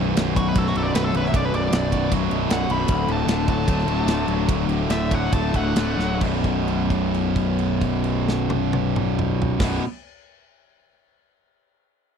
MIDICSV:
0, 0, Header, 1, 6, 480
1, 0, Start_track
1, 0, Key_signature, 2, "minor"
1, 0, Tempo, 389864
1, 1641, Time_signature, 4, 2, 24, 8
1, 4525, Tempo, 411241
1, 6445, Tempo, 456274
1, 13659, End_track
2, 0, Start_track
2, 0, Title_t, "Lead electric guitar"
2, 0, Program_c, 0, 29
2, 453, Note_on_c, 0, 66, 83
2, 565, Note_off_c, 0, 66, 0
2, 598, Note_on_c, 0, 71, 83
2, 716, Note_off_c, 0, 71, 0
2, 716, Note_on_c, 0, 69, 85
2, 836, Note_off_c, 0, 69, 0
2, 836, Note_on_c, 0, 66, 91
2, 936, Note_off_c, 0, 66, 0
2, 954, Note_on_c, 0, 69, 92
2, 1019, Note_on_c, 0, 74, 102
2, 1055, Note_off_c, 0, 69, 0
2, 1164, Note_off_c, 0, 74, 0
2, 1164, Note_on_c, 0, 71, 91
2, 1279, Note_off_c, 0, 71, 0
2, 1284, Note_on_c, 0, 69, 82
2, 1399, Note_off_c, 0, 69, 0
2, 1438, Note_on_c, 0, 71, 85
2, 1536, Note_off_c, 0, 71, 0
2, 1571, Note_on_c, 0, 76, 86
2, 1663, Note_off_c, 0, 76, 0
2, 1674, Note_on_c, 0, 74, 82
2, 1786, Note_off_c, 0, 74, 0
2, 1786, Note_on_c, 0, 71, 93
2, 1890, Note_off_c, 0, 71, 0
2, 1912, Note_on_c, 0, 74, 93
2, 2125, Note_off_c, 0, 74, 0
2, 2140, Note_on_c, 0, 74, 92
2, 2595, Note_off_c, 0, 74, 0
2, 3110, Note_on_c, 0, 78, 101
2, 3328, Note_off_c, 0, 78, 0
2, 3340, Note_on_c, 0, 83, 91
2, 3796, Note_off_c, 0, 83, 0
2, 3838, Note_on_c, 0, 81, 93
2, 4288, Note_off_c, 0, 81, 0
2, 4304, Note_on_c, 0, 81, 95
2, 5675, Note_off_c, 0, 81, 0
2, 5971, Note_on_c, 0, 76, 98
2, 6234, Note_off_c, 0, 76, 0
2, 6234, Note_on_c, 0, 78, 88
2, 6456, Note_off_c, 0, 78, 0
2, 6456, Note_on_c, 0, 81, 90
2, 6695, Note_off_c, 0, 81, 0
2, 6695, Note_on_c, 0, 78, 93
2, 7370, Note_off_c, 0, 78, 0
2, 13659, End_track
3, 0, Start_track
3, 0, Title_t, "Distorted electric guitar"
3, 0, Program_c, 1, 30
3, 0, Note_on_c, 1, 35, 78
3, 0, Note_on_c, 1, 42, 66
3, 213, Note_on_c, 1, 54, 70
3, 447, Note_on_c, 1, 47, 67
3, 679, Note_off_c, 1, 54, 0
3, 684, Note_on_c, 1, 54, 65
3, 913, Note_off_c, 1, 35, 0
3, 915, Note_off_c, 1, 42, 0
3, 930, Note_on_c, 1, 42, 73
3, 1148, Note_off_c, 1, 54, 0
3, 1153, Note_on_c, 1, 54, 78
3, 1382, Note_off_c, 1, 47, 0
3, 1397, Note_on_c, 1, 47, 70
3, 1633, Note_on_c, 1, 35, 77
3, 1854, Note_off_c, 1, 42, 0
3, 1869, Note_on_c, 1, 42, 70
3, 2103, Note_off_c, 1, 54, 0
3, 2108, Note_on_c, 1, 54, 68
3, 2336, Note_off_c, 1, 47, 0
3, 2351, Note_on_c, 1, 47, 63
3, 2578, Note_off_c, 1, 54, 0
3, 2582, Note_on_c, 1, 54, 70
3, 2802, Note_off_c, 1, 42, 0
3, 2817, Note_on_c, 1, 42, 75
3, 2836, Note_off_c, 1, 35, 0
3, 3067, Note_off_c, 1, 54, 0
3, 3071, Note_on_c, 1, 54, 69
3, 3279, Note_off_c, 1, 47, 0
3, 3294, Note_on_c, 1, 47, 73
3, 3543, Note_on_c, 1, 38, 80
3, 3546, Note_off_c, 1, 47, 0
3, 3548, Note_off_c, 1, 42, 0
3, 3783, Note_on_c, 1, 50, 68
3, 4018, Note_on_c, 1, 57, 66
3, 4269, Note_off_c, 1, 54, 0
3, 4273, Note_on_c, 1, 54, 65
3, 4514, Note_off_c, 1, 57, 0
3, 4529, Note_on_c, 1, 57, 65
3, 4748, Note_off_c, 1, 50, 0
3, 4750, Note_off_c, 1, 38, 0
3, 4762, Note_on_c, 1, 50, 77
3, 4987, Note_off_c, 1, 57, 0
3, 5001, Note_on_c, 1, 57, 64
3, 5230, Note_off_c, 1, 54, 0
3, 5234, Note_on_c, 1, 54, 62
3, 5470, Note_on_c, 1, 38, 79
3, 5688, Note_off_c, 1, 50, 0
3, 5702, Note_on_c, 1, 50, 68
3, 5933, Note_off_c, 1, 57, 0
3, 5947, Note_on_c, 1, 57, 72
3, 6200, Note_off_c, 1, 54, 0
3, 6214, Note_on_c, 1, 54, 62
3, 6447, Note_off_c, 1, 57, 0
3, 6460, Note_on_c, 1, 57, 66
3, 6676, Note_off_c, 1, 38, 0
3, 6677, Note_off_c, 1, 50, 0
3, 6689, Note_on_c, 1, 50, 65
3, 6915, Note_off_c, 1, 57, 0
3, 6928, Note_on_c, 1, 57, 70
3, 7152, Note_off_c, 1, 54, 0
3, 7164, Note_on_c, 1, 54, 61
3, 7375, Note_on_c, 1, 35, 90
3, 7388, Note_off_c, 1, 50, 0
3, 7391, Note_off_c, 1, 57, 0
3, 7392, Note_off_c, 1, 54, 0
3, 7396, Note_on_c, 1, 42, 85
3, 7414, Note_on_c, 1, 47, 105
3, 10930, Note_off_c, 1, 35, 0
3, 10935, Note_on_c, 1, 35, 85
3, 10951, Note_off_c, 1, 42, 0
3, 10955, Note_on_c, 1, 42, 85
3, 10969, Note_off_c, 1, 47, 0
3, 10973, Note_on_c, 1, 47, 100
3, 11158, Note_off_c, 1, 35, 0
3, 11168, Note_off_c, 1, 42, 0
3, 11177, Note_off_c, 1, 47, 0
3, 13659, End_track
4, 0, Start_track
4, 0, Title_t, "Distorted electric guitar"
4, 0, Program_c, 2, 30
4, 192, Note_on_c, 2, 42, 73
4, 898, Note_on_c, 2, 47, 62
4, 1121, Note_off_c, 2, 42, 0
4, 1136, Note_on_c, 2, 42, 73
4, 1372, Note_off_c, 2, 47, 0
4, 1867, Note_off_c, 2, 42, 0
4, 2117, Note_on_c, 2, 42, 76
4, 2834, Note_on_c, 2, 47, 70
4, 3062, Note_off_c, 2, 42, 0
4, 3077, Note_on_c, 2, 42, 70
4, 3307, Note_off_c, 2, 47, 0
4, 3558, Note_off_c, 2, 42, 0
4, 3786, Note_on_c, 2, 45, 72
4, 4030, Note_on_c, 2, 50, 70
4, 4747, Note_on_c, 2, 54, 66
4, 4971, Note_off_c, 2, 50, 0
4, 4985, Note_off_c, 2, 45, 0
4, 4985, Note_on_c, 2, 50, 69
4, 5213, Note_off_c, 2, 54, 0
4, 5709, Note_on_c, 2, 45, 73
4, 5935, Note_off_c, 2, 50, 0
4, 5949, Note_on_c, 2, 50, 73
4, 6673, Note_on_c, 2, 54, 63
4, 6904, Note_off_c, 2, 50, 0
4, 6907, Note_off_c, 2, 45, 0
4, 6917, Note_on_c, 2, 50, 63
4, 7136, Note_off_c, 2, 54, 0
4, 7386, Note_off_c, 2, 50, 0
4, 13659, End_track
5, 0, Start_track
5, 0, Title_t, "Picked electric bass"
5, 0, Program_c, 3, 34
5, 0, Note_on_c, 3, 23, 88
5, 183, Note_off_c, 3, 23, 0
5, 193, Note_on_c, 3, 23, 86
5, 645, Note_off_c, 3, 23, 0
5, 683, Note_on_c, 3, 23, 92
5, 906, Note_off_c, 3, 23, 0
5, 918, Note_on_c, 3, 23, 86
5, 1144, Note_off_c, 3, 23, 0
5, 1165, Note_on_c, 3, 23, 81
5, 1387, Note_off_c, 3, 23, 0
5, 1396, Note_on_c, 3, 23, 98
5, 1622, Note_off_c, 3, 23, 0
5, 1645, Note_on_c, 3, 23, 88
5, 1863, Note_off_c, 3, 23, 0
5, 1871, Note_on_c, 3, 23, 95
5, 2099, Note_off_c, 3, 23, 0
5, 2106, Note_on_c, 3, 23, 89
5, 2560, Note_off_c, 3, 23, 0
5, 2608, Note_on_c, 3, 23, 89
5, 2828, Note_off_c, 3, 23, 0
5, 2833, Note_on_c, 3, 23, 90
5, 3060, Note_off_c, 3, 23, 0
5, 3066, Note_on_c, 3, 23, 81
5, 3296, Note_off_c, 3, 23, 0
5, 3306, Note_on_c, 3, 23, 93
5, 3536, Note_off_c, 3, 23, 0
5, 3554, Note_on_c, 3, 26, 90
5, 3776, Note_off_c, 3, 26, 0
5, 3784, Note_on_c, 3, 26, 87
5, 4016, Note_off_c, 3, 26, 0
5, 4024, Note_on_c, 3, 26, 83
5, 4485, Note_off_c, 3, 26, 0
5, 4525, Note_on_c, 3, 26, 88
5, 4730, Note_off_c, 3, 26, 0
5, 4737, Note_on_c, 3, 26, 86
5, 4961, Note_off_c, 3, 26, 0
5, 4968, Note_on_c, 3, 26, 88
5, 5199, Note_off_c, 3, 26, 0
5, 5219, Note_on_c, 3, 26, 93
5, 5446, Note_off_c, 3, 26, 0
5, 5467, Note_on_c, 3, 26, 90
5, 5678, Note_off_c, 3, 26, 0
5, 5685, Note_on_c, 3, 26, 88
5, 5923, Note_off_c, 3, 26, 0
5, 5931, Note_on_c, 3, 26, 87
5, 6403, Note_off_c, 3, 26, 0
5, 6449, Note_on_c, 3, 26, 89
5, 6661, Note_off_c, 3, 26, 0
5, 6675, Note_on_c, 3, 26, 94
5, 6891, Note_off_c, 3, 26, 0
5, 6910, Note_on_c, 3, 26, 80
5, 7128, Note_off_c, 3, 26, 0
5, 7133, Note_on_c, 3, 26, 88
5, 7360, Note_off_c, 3, 26, 0
5, 7382, Note_on_c, 3, 23, 89
5, 10848, Note_off_c, 3, 23, 0
5, 10941, Note_on_c, 3, 23, 90
5, 11146, Note_off_c, 3, 23, 0
5, 13659, End_track
6, 0, Start_track
6, 0, Title_t, "Drums"
6, 205, Note_on_c, 9, 51, 99
6, 215, Note_on_c, 9, 38, 120
6, 328, Note_off_c, 9, 51, 0
6, 338, Note_off_c, 9, 38, 0
6, 448, Note_on_c, 9, 36, 96
6, 455, Note_on_c, 9, 51, 72
6, 571, Note_off_c, 9, 36, 0
6, 578, Note_off_c, 9, 51, 0
6, 681, Note_on_c, 9, 51, 91
6, 686, Note_on_c, 9, 36, 118
6, 804, Note_off_c, 9, 51, 0
6, 809, Note_off_c, 9, 36, 0
6, 819, Note_on_c, 9, 38, 32
6, 929, Note_on_c, 9, 51, 62
6, 942, Note_off_c, 9, 38, 0
6, 1052, Note_off_c, 9, 51, 0
6, 1169, Note_on_c, 9, 51, 106
6, 1179, Note_on_c, 9, 38, 125
6, 1293, Note_off_c, 9, 51, 0
6, 1302, Note_off_c, 9, 38, 0
6, 1409, Note_on_c, 9, 51, 73
6, 1532, Note_off_c, 9, 51, 0
6, 1547, Note_on_c, 9, 38, 33
6, 1649, Note_on_c, 9, 36, 111
6, 1655, Note_on_c, 9, 51, 92
6, 1670, Note_off_c, 9, 38, 0
6, 1772, Note_off_c, 9, 36, 0
6, 1778, Note_off_c, 9, 51, 0
6, 1894, Note_on_c, 9, 51, 74
6, 2017, Note_off_c, 9, 51, 0
6, 2124, Note_on_c, 9, 51, 109
6, 2134, Note_on_c, 9, 38, 126
6, 2247, Note_off_c, 9, 51, 0
6, 2257, Note_off_c, 9, 38, 0
6, 2367, Note_on_c, 9, 36, 87
6, 2371, Note_on_c, 9, 51, 74
6, 2490, Note_off_c, 9, 36, 0
6, 2494, Note_off_c, 9, 51, 0
6, 2606, Note_on_c, 9, 36, 108
6, 2610, Note_on_c, 9, 51, 97
6, 2729, Note_off_c, 9, 36, 0
6, 2733, Note_off_c, 9, 51, 0
6, 2845, Note_on_c, 9, 51, 68
6, 2968, Note_off_c, 9, 51, 0
6, 3081, Note_on_c, 9, 51, 110
6, 3091, Note_on_c, 9, 38, 127
6, 3205, Note_off_c, 9, 51, 0
6, 3214, Note_off_c, 9, 38, 0
6, 3322, Note_on_c, 9, 51, 76
6, 3445, Note_off_c, 9, 51, 0
6, 3546, Note_on_c, 9, 51, 92
6, 3557, Note_on_c, 9, 36, 106
6, 3669, Note_off_c, 9, 51, 0
6, 3680, Note_off_c, 9, 36, 0
6, 3797, Note_on_c, 9, 51, 67
6, 3920, Note_off_c, 9, 51, 0
6, 4043, Note_on_c, 9, 51, 100
6, 4052, Note_on_c, 9, 38, 122
6, 4166, Note_off_c, 9, 51, 0
6, 4175, Note_off_c, 9, 38, 0
6, 4285, Note_on_c, 9, 36, 92
6, 4285, Note_on_c, 9, 51, 66
6, 4408, Note_off_c, 9, 36, 0
6, 4408, Note_off_c, 9, 51, 0
6, 4529, Note_on_c, 9, 36, 106
6, 4532, Note_on_c, 9, 51, 94
6, 4645, Note_off_c, 9, 36, 0
6, 4649, Note_off_c, 9, 51, 0
6, 4654, Note_on_c, 9, 38, 32
6, 4761, Note_on_c, 9, 51, 66
6, 4771, Note_off_c, 9, 38, 0
6, 4878, Note_off_c, 9, 51, 0
6, 4996, Note_on_c, 9, 51, 101
6, 5005, Note_on_c, 9, 38, 112
6, 5113, Note_off_c, 9, 51, 0
6, 5122, Note_off_c, 9, 38, 0
6, 5230, Note_on_c, 9, 51, 67
6, 5346, Note_off_c, 9, 51, 0
6, 5472, Note_on_c, 9, 36, 99
6, 5473, Note_on_c, 9, 51, 93
6, 5588, Note_off_c, 9, 36, 0
6, 5590, Note_off_c, 9, 51, 0
6, 5709, Note_on_c, 9, 51, 69
6, 5826, Note_off_c, 9, 51, 0
6, 5953, Note_on_c, 9, 51, 96
6, 5962, Note_on_c, 9, 38, 108
6, 6070, Note_off_c, 9, 51, 0
6, 6079, Note_off_c, 9, 38, 0
6, 6203, Note_on_c, 9, 36, 95
6, 6207, Note_on_c, 9, 51, 74
6, 6320, Note_off_c, 9, 36, 0
6, 6323, Note_off_c, 9, 51, 0
6, 6452, Note_on_c, 9, 36, 117
6, 6452, Note_on_c, 9, 51, 91
6, 6557, Note_off_c, 9, 36, 0
6, 6557, Note_off_c, 9, 51, 0
6, 6676, Note_on_c, 9, 51, 64
6, 6677, Note_on_c, 9, 36, 78
6, 6781, Note_off_c, 9, 51, 0
6, 6782, Note_off_c, 9, 36, 0
6, 6907, Note_on_c, 9, 51, 105
6, 6915, Note_on_c, 9, 38, 127
6, 7012, Note_off_c, 9, 51, 0
6, 7020, Note_off_c, 9, 38, 0
6, 7154, Note_on_c, 9, 38, 63
6, 7259, Note_off_c, 9, 38, 0
6, 7383, Note_on_c, 9, 36, 96
6, 7384, Note_on_c, 9, 49, 87
6, 7488, Note_off_c, 9, 36, 0
6, 7489, Note_off_c, 9, 49, 0
6, 7625, Note_on_c, 9, 36, 63
6, 7630, Note_on_c, 9, 49, 45
6, 7730, Note_off_c, 9, 36, 0
6, 7735, Note_off_c, 9, 49, 0
6, 7873, Note_on_c, 9, 57, 46
6, 7978, Note_off_c, 9, 57, 0
6, 8110, Note_on_c, 9, 36, 64
6, 8118, Note_on_c, 9, 49, 50
6, 8215, Note_off_c, 9, 36, 0
6, 8223, Note_off_c, 9, 49, 0
6, 8363, Note_on_c, 9, 57, 47
6, 8468, Note_off_c, 9, 57, 0
6, 8590, Note_on_c, 9, 36, 59
6, 8596, Note_on_c, 9, 49, 49
6, 8695, Note_off_c, 9, 36, 0
6, 8701, Note_off_c, 9, 49, 0
6, 8828, Note_on_c, 9, 57, 53
6, 8933, Note_off_c, 9, 57, 0
6, 9069, Note_on_c, 9, 36, 67
6, 9071, Note_on_c, 9, 49, 52
6, 9174, Note_off_c, 9, 36, 0
6, 9176, Note_off_c, 9, 49, 0
6, 9304, Note_on_c, 9, 57, 50
6, 9410, Note_off_c, 9, 57, 0
6, 9564, Note_on_c, 9, 38, 89
6, 9669, Note_off_c, 9, 38, 0
6, 9789, Note_on_c, 9, 48, 98
6, 9895, Note_off_c, 9, 48, 0
6, 10033, Note_on_c, 9, 48, 94
6, 10139, Note_off_c, 9, 48, 0
6, 10277, Note_on_c, 9, 47, 87
6, 10382, Note_off_c, 9, 47, 0
6, 10514, Note_on_c, 9, 45, 94
6, 10619, Note_off_c, 9, 45, 0
6, 10755, Note_on_c, 9, 43, 106
6, 10860, Note_off_c, 9, 43, 0
6, 10944, Note_on_c, 9, 49, 102
6, 10948, Note_on_c, 9, 36, 108
6, 10953, Note_on_c, 9, 38, 96
6, 11050, Note_off_c, 9, 49, 0
6, 11053, Note_off_c, 9, 36, 0
6, 11058, Note_off_c, 9, 38, 0
6, 13659, End_track
0, 0, End_of_file